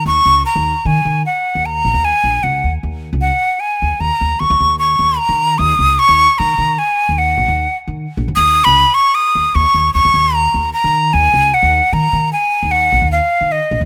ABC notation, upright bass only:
X:1
M:7/4
L:1/16
Q:1/4=152
K:Ebm
V:1 name="Upright bass" clef=bass
E,,2 D,,2 z E,,2 z E,2 E,2 z3 E,,3 B,,, E,,2 z B,,,2 D,,2 E,,2 | E,,3 D,,2 z4 z E,, z E,, z E,,2 E,, E,, E,,4 E,,2 z E,3 | E,,2 D,,2 z E,,2 z E,2 E,2 z3 E,,3 B,,, E,,2 z2 E,2 z B,,, E,, | E,,3 D,,2 z4 z E,, z E,, z E,,2 E,, E,, E,,4 E,,2 z E,3 |
E,,2 D,,2 z E,,2 z E,2 E,2 z3 E,,3 B,,, E,,2 z2 E,2 z B,,, E,, |]